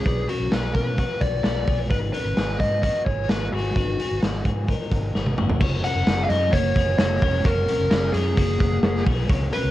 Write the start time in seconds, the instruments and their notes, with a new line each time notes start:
Already playing: lead electric guitar G#4
0.06 fingered electric bass B1, clean electric guitar D4 B4, kick, closed hi-hat
0.29 clean electric guitar C#4 A#4, lead electric guitar F#4, closed hi-hat
0.40 fingered electric bass B1
0.52 fingered electric bass B1, clean electric guitar B3 G#4, lead electric guitar B4, snare, closed hi-hat
0.75 fingered electric bass B2, clean electric guitar C#4 A#4, lead electric guitar B4, kick, closed hi-hat
0.98 clean electric guitar B3 F#4, kick, closed hi-hat
1.21 fingered electric bass B1, lead electric guitar D5, kick, closed hi-hat
1.44 fingered electric bass B1, clean electric guitar B3 F#4, lead electric guitar D5, snare, closed hi-hat
1.67 fingered electric bass B1, clean electric guitar B3 G#4, kick, open hi-hat
1.90 fingered electric bass G#1, clean electric guitar D#4 B4, lead electric guitar B4, kick, closed hi-hat
2.13 clean electric guitar C#4 A#4, lead electric guitar B4, closed hi-hat
2.25 fingered electric bass G#1
2.37 fingered electric bass G#1, clean electric guitar B3 G#4, snare, closed hi-hat
2.60 fingered electric bass G#2, clean electric guitar D#4 B4, lead electric guitar D#5, kick, closed hi-hat
2.82 clean electric guitar B3 F#4, lead electric guitar D#5, kick, closed hi-hat
3.05 fingered electric bass G#1, clean electric guitar B3 G#4, lead electric guitar C#5, kick, closed hi-hat
3.29 fingered electric bass G#1, clean electric guitar B3 F#4, lead electric guitar B4, snare, closed hi-hat
3.52 fingered electric bass G#1, clean electric guitar B3 G#4, lead electric guitar F#4, open hi-hat
3.76 fingered electric bass G#1, clean electric guitar D#4 B4, kick, closed hi-hat
3.99 clean electric guitar B3 G#4, closed hi-hat
4.11 fingered electric bass G#1
4.22 fingered electric bass G#1, clean electric guitar B3 F#4, snare, closed hi-hat
4.45 fingered electric bass G#2, clean electric guitar B3 G#4, kick, closed hi-hat
4.68 clean electric guitar D#4 A#4, kick, closed hi-hat
4.91 fingered electric bass G#1, kick, closed hi-hat
5.15 fingered electric bass G#1, clean electric guitar B3 G#4, snare
5.26 high tom
5.37 fingered electric bass G#1, clean electric guitar A#3 F#4, mid tom
5.49 floor tom
5.61 fingered electric bass F#1, clean electric guitar F#4 C#5, kick, crash
5.84 clean electric guitar C#4 A#4, lead electric guitar F#5, closed hi-hat
5.96 fingered electric bass F#1
6.07 fingered electric bass F#1, clean electric guitar C#4 G#4, snare, closed hi-hat
6.24 lead electric guitar F5
6.29 fingered electric bass F#2, clean electric guitar C#4 A#4, lead electric guitar D#5, closed hi-hat
6.52 fingered electric bass F#1, clean electric guitar A#3 F#4, lead electric guitar C#5, kick, closed hi-hat
6.76 fingered electric bass F#1, clean electric guitar B3 G#4, kick, closed hi-hat
6.98 fingered electric bass F#1, clean electric guitar A#3 F#4, lead electric guitar C#5, snare, closed hi-hat
7.21 fingered electric bass F1, clean electric guitar C#4 A#4, kick, open hi-hat
7.45 fingered electric bass F#1, clean electric guitar F#4 C#5, lead electric guitar A#4, kick, closed hi-hat
7.68 clean electric guitar C#4 A#4, closed hi-hat
7.79 fingered electric bass F#1
7.91 fingered electric bass F#1, clean electric guitar C#4 G#4, lead electric guitar A#4, snare, closed hi-hat
8.13 fingered electric bass F#2, clean electric guitar C#4 A#4, lead electric guitar G#4, closed hi-hat
8.37 fingered electric bass F#1, clean electric guitar A#3 F#4, kick, closed hi-hat
8.61 fingered electric bass F#1, kick, closed hi-hat
8.83 fingered electric bass F#1, clean electric guitar A#3 F#4, snare, closed hi-hat
9.06 fingered electric bass B1, clean electric guitar B3 G#4, kick, open hi-hat
9.30 fingered electric bass C#2, clean electric guitar F4 C#5, kick, closed hi-hat
9.53 clean electric guitar C#4 A#4, lead electric guitar B4, closed hi-hat
9.64 fingered electric bass C#2